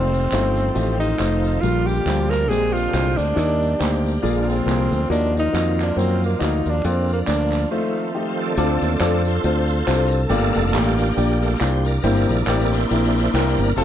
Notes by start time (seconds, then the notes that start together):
Already playing: F1 D#3 F3 A3 C4 D#4 F4 C5
0.14 tambourine
0.32 G1 A3 D#4 F4 C5, clap, tambourine
0.57 tambourine
0.75 A1 A3 D#4 F4 G4, tambourine
1.00 D#4, tambourine
1.19 F1 A3 D#4 F4 C5, clap, tambourine
1.44 tambourine
1.61 A#1 A#2 D3 G3 A#3 D4 F4 A#4, tambourine
1.87 G4, tambourine
2.06 D2 G3 D4 F4 C5, clap, tambourine
2.30 A#4, clap, tambourine
2.49 A#1 A#2 G#3 C4 D4 G4 G#4 C5, tambourine
2.73 F4, tambourine
2.93 C2 G#3 D4 G4 C5, clap, tambourine
3.17 D2 D4, tambourine
3.35 D#2 D#3 G3 A#3 D4 D#4 G4 D5, tambourine
3.63 tambourine
3.79 D2 A#3 D#4 G4 C5, clap, tambourine
4.06 tambourine
4.22 A#1 A#2 D3 F3 G#3 A#3 F4 G#4 D5, tambourine
4.39 D4
4.49 C4, tambourine
4.66 C2 A#3 F4 G#4 A#4, clap, tambourine
4.91 D2, tambourine
5.10 D#2 D#3 A#3 D4 F4 F#4 D#5, tambourine
5.37 D#4, tambourine
5.52 F2 A#3 F4 F#4 D#5, clap, tambourine
5.80 D4, clap, tambourine
5.96 F#2 A#3 C4 F4 F#4 C5, tambourine
6.24 A#3, tambourine
6.39 D2 A#3 D#4 F4 F#4 D5, clap, tambourine
6.66 D#2, tambourine
6.70 D4
6.84 F2 A#3 C4 D4 F4 D5, tambourine
7.09 A#3, tambourine
7.26 D2 A#3 D4 F4 D5, clap, tambourine
7.52 clap, tambourine
7.71 D#3 A3 C4 D#4 F4 C5
8.14 A3 D#4 F4 G4 C5
8.40 F4 A4 D5
8.57 D2 D3 A3 C4 D4 F4 A4 D5, tambourine
8.82 D#2, tambourine
9.00 F2 C4 D4 F4 A4 D5, clap, tambourine
9.25 F4 A4 C5, tambourine
9.44 D2 C4 D4 F4 A4 C5, tambourine
9.69 tambourine
9.87 C2 C4 D4 F4 A4 C5, clap, tambourine
10.06 A#4
10.12 A4, tambourine
10.29 G1 G2 A3 A#3 D4 F4 G4 A4 D5, tambourine
10.55 F1, tambourine
10.74 A1 A#3 D4 F4 G4 F5, clap, tambourine
10.99 tambourine
11.17 A#1 A#3 D4 F4 G4 D5, tambourine
11.42 A3 A#3 F4, tambourine
11.60 C2 A#3 D4 F4 G4 C5 D5, clap, tambourine
11.85 A#4 D5, tambourine
12.02 G1 G2 A#3 C4 D4 E4 G4 C5, tambourine
12.29 A#1, tambourine
12.47 A1 A#3 C4 E4 G4 D5, clap, tambourine
12.72 E4 C5, tambourine
12.91 A#1 A#3 C4 E4 G4 A#4, tambourine
13.16 tambourine
13.34 C2 A#3 C4 E4 G4 A#4, clap, tambourine
13.58 G1 A#4, tambourine
13.76 F1 A3 C4 F4 A4, tambourine